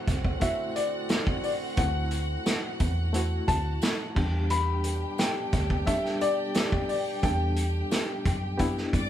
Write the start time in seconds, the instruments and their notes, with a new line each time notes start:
Already playing: trombone section D3 C4 F#4, reed electric piano A3 C4 E4 F#4, violin section F#4 F#5, grand piano F#5
0.07 fingered electric bass C2, kick, snare, closed hi-hat, tambourine
0.25 kick
0.40 reed electric piano A3 C4 E4 F#4, grand piano E5, kick, closed hi-hat, tambourine
0.76 grand piano D5, closed hi-hat, tambourine
1.09 snare, closed hi-hat, tambourine
1.27 kick
1.43 grand piano D5, open hi-hat, tambourine
1.76 fingered electric bass D2, reed electric piano A3 C4 E4 A4, grand piano F#5, kick, closed hi-hat
2.11 closed hi-hat, tambourine
2.46 snare, closed hi-hat, tambourine
2.80 fingered electric bass E2, kick, closed hi-hat, tambourine
3.13 reed electric piano A3 C4 E4 F#4, closed hi-hat, tambourine
3.48 fingered electric bass D2, grand piano A5, kick, closed hi-hat, tambourine
3.82 snare, closed hi-hat, tambourine
4.15 fingered electric bass E2, trombone section B2 D4 G4, reed electric piano G3 B3 D4 G4, violin section G4 G5, kick, crash
4.50 grand piano B5, closed hi-hat
4.84 closed hi-hat, tambourine
5.18 grand piano G5, snare, closed hi-hat, tambourine
5.53 fingered electric bass D2, kick, snare, closed hi-hat, tambourine
5.70 kick
5.86 reed electric piano G3 B3 D4 A4, grand piano E5, kick, closed hi-hat, tambourine
6.05 snare
6.21 grand piano D5, closed hi-hat, tambourine
6.54 snare, closed hi-hat, tambourine
6.72 kick
6.89 grand piano D5, open hi-hat, tambourine
7.22 fingered electric bass E2, reed electric piano G3 B3 D4 A4, grand piano G5, kick, closed hi-hat, tambourine
7.56 closed hi-hat, tambourine
7.91 snare, closed hi-hat, tambourine
8.25 fingered electric bass F#2, kick, closed hi-hat, tambourine
8.58 reed electric piano B3 D4 E4 G4, kick, closed hi-hat, tambourine
8.77 snare
8.93 fingered electric bass G2, violin section D5 D6, kick, closed hi-hat, tambourine